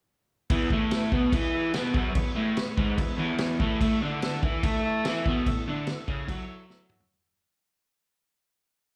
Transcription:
0.50 E2 E3 G#4 B4 E5, kick, crash
0.70 A2 A3 G#4 B4 E5, kick
0.91 G#4 B4 E5, snare, crash
1.12 B2 B3 G#4 B4 F#5, kick
1.32 E3 E4 G#4 B4 D#5, kick, crash
1.53 G#4 B4 E5
1.74 B2 B3 G#4 B4 F#5, snare, crash
1.93 F#2 F#3 G#4 B4 E5, kick
2.14 E2 G#4 B4 C#5, kick, crash
2.35 A2 A3 G#4 B4 E5
2.56 G#4 B4 C#5, snare, crash
2.76 G#2 G#3 G#4 B4 F#5, kick
2.96 E2 G#4 B4 E5, kick, crash
3.16 E2 E3 G#4 B4 C#5 A5
3.38 G#4 B4 C#5 G#5, snare, crash
3.59 A2 A3 G#4 B4 E5, kick
3.80 A2 A3 E4 A4 E5, kick, crash
4.02 D3 D4 E4 A4 E5
4.22 E4 A4 E5, snare, crash
4.42 E3 E4 A4 E5, kick
4.62 A3 E4 A4 E5, kick, crash
4.85 E4 A4 E5
5.03 E3 E4 A4 E5, snare, crash
5.24 B2 B3 E4 A4 E5, kick
5.46 A2 E4 A4 E5, kick, crash
5.66 D3 D4 E4 A4 E5
5.86 E4 A4 E5, snare, crash
6.06 C#3 C#4 E4 A4 E5, kick
6.28 F#3 E4 F#4 A4 E5, kick, crash
6.48 E4 A4 E5
6.70 E4 A4 E5, snare
6.89 E4 A4 E5, mid tom
7.00 floor tom

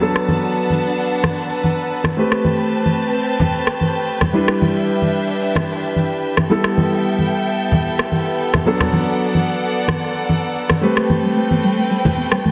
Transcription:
Already playing: B4 A5
0.00 F#3 B3 D4 A4 F#5
0.16 cross-stick
0.28 high conga
0.70 high conga
1.23 cross-stick, high conga
1.64 high conga
2.04 cross-stick, high conga
2.17 A3 C4 G4 B4 G5 A5
2.32 cross-stick
2.44 high conga
2.86 high conga
3.40 high conga, low conga
3.67 cross-stick
3.81 high conga
4.21 cross-stick, high conga, low conga
4.33 G3 D4 E4 B4 E5
4.48 cross-stick
4.62 high conga
5.02 high conga
5.55 cross-stick, high conga
5.96 high conga
6.37 cross-stick, high conga
6.49 G3 B3 E4 A4 E5 G5
6.64 cross-stick
6.77 high conga
7.18 high conga
7.72 high conga, low conga
7.99 cross-stick
8.12 high conga
8.54 cross-stick, high conga, low conga
8.65 F#3 B3 D4 A4 D5 F#5
8.80 cross-stick, low conga
8.93 high conga
9.35 high conga
9.88 cross-stick, high conga
10.29 high conga
10.70 cross-stick, high conga
10.81 G3 A3 C4 G4 B4 G5
10.97 A3, cross-stick
11.10 B3, high conga
11.24 G3
11.37 A3
11.51 B3, high conga
11.64 G3
11.78 A3
11.91 G3
12.05 A3, high conga, low conga
12.18 B3
12.32 G3, cross-stick
12.45 A3, high conga

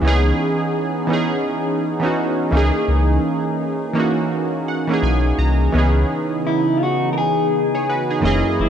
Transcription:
0.01 C#2 E3 B3 C#4 D#4
0.06 D#4 G#4
1.07 E3 B3 C#4
1.12 D#4 G#4
2.00 E3 B3 C#4
2.04 D#4 F#4
2.51 C#2 E3 A#3 C#4
2.55 D#4 G#4
2.88 C#2
3.93 E3 A#3 C#4
3.98 D#4 F#4
4.68 F#5
4.87 E3 A#3 C#4
4.92 D#4 G#4
5.02 B1 G#5
5.38 C2 A#5
5.72 C#2 C#3 E3 B3 C#4 D#4
5.77 D#4 G#4
6.47 E4
6.77 F4
6.83 F#4
7.13 A#4
7.18 G#4
7.75 G#4 C#5
7.89 F#4 B4
8.10 D#4 G#4
8.20 F#1 F#2 E3 G#3 A#3 C#4 E4
8.25 G#4 D#5
8.59 F#1 E4

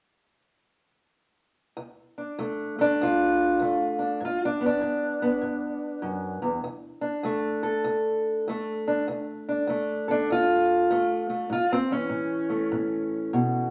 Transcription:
1.77 D2
2.18 D4
2.39 D2 A3
2.79 A3 D4
3.01 D2 F4
3.59 D2 A3
3.99 D4
4.20 G2
4.25 F4
4.45 D4
4.61 B3
4.66 D4
4.81 G2
5.22 B3
5.41 G2
6.02 F#2
6.42 E2
6.64 D2
7.01 D4
7.23 D2 A3
7.63 A4
7.84 D2
8.48 D2 A3
8.88 D4
9.08 D2
9.49 D4
9.67 D2 A3
10.08 D4 A4
10.30 D2 F4
10.90 D2 A3
11.30 A3
11.50 A2 F4
11.72 C4
11.91 E3 C#4
12.10 A2
12.50 A3
12.72 A2
13.33 B2

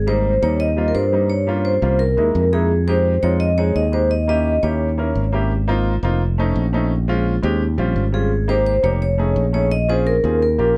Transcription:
Already playing: G#1
0.07 G3 A#3 C4 D#4 C5
0.42 D#2 G3 A#3 C4 D#4 C#5
0.60 D#5
0.77 G3 A#3 C4 F4
0.88 A#4
0.95 G2 C5
1.12 G3 A#3 C4 D#4
1.30 C#5
1.47 G3 A#3 C#4 F4
1.65 C5
1.82 C2 G3 A#3 C#4 F4
1.99 A#4
2.17 D#2 G#3 A#3 D#4 E4
2.35 F2
2.52 G#3 A#3 D#4 E4 G#4
2.87 G#3 C4 D#4 G4 C5
3.23 F2 G#3 C4 D#4 F4 C#5
3.40 D#5
3.58 G#3 C4 D#4 G#4 C#5
3.76 D#2 D#5
3.92 G#3 C4 D#4 G4 C5
4.11 D#5
4.27 A#3 C#4 E4 G4 D#5
4.63 D#2 A#3 C#4 E4 G4 C#5
4.98 A#3 C#4 E4 A#4
5.15 G#1
5.32 A#3 C#4 E4 G4
5.67 A#3 C4 D#4 F4
6.03 F1 A#3 C4 D#4 F4
6.38 A3 C4 C#4 D#4
6.56 A#1
6.73 A3 C4 C#4 D#4
7.08 G#3 C4 C#4 F4
7.43 D#2 G#3 C4 C#4 G4
7.78 A#1 G3 C4 C#4 F4
7.96 G#1
8.12 G3 C4 C#4 F4 G#4
8.48 A#3 C4 D#4 G4 C5
8.66 C5
8.83 F1 A#3 C4 D#4 G4 C#5
9.02 C#5
9.18 A3 C#4 D#4 G#4
9.36 A#1
9.53 A3 C#4 D#4 G#4 C#5
9.71 D#5
9.88 C4 C#4 F4 G#4 C5
10.07 A#4
10.23 D#2 C4 C#4 F4 G#4
10.43 A#4
10.58 A#1 A#3 C#4 F4 G4

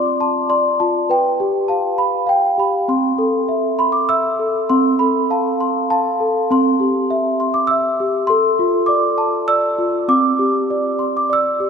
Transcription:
Already playing: C4 F4 D5 C6
0.20 A5 C6
0.49 D5 C6
0.80 F4 A5
1.10 B4 G5
1.40 G4
1.68 F5 A5
1.98 B5
2.27 F5 G5
2.58 G4 B5
2.88 C4 C6
3.18 A4
3.49 E5
3.79 B5 C6
3.92 D6
4.09 E5 E6
4.39 A4
4.70 C4 C6
4.99 A4 B5
5.30 F5 A5
5.60 C6
5.90 F5 A5
6.20 A4
6.51 C4 C6
6.80 G4
7.10 E5
7.40 C6
7.54 D6
7.67 E5 E6
8.00 G4
8.27 A4 C6
8.59 F4
8.86 D5 D6
9.18 A5
9.48 D5 E6
9.78 F4
10.08 C4 D6
10.39 G4
10.70 D5
10.99 C6
11.17 D6
11.30 D5 E6
11.60 G4

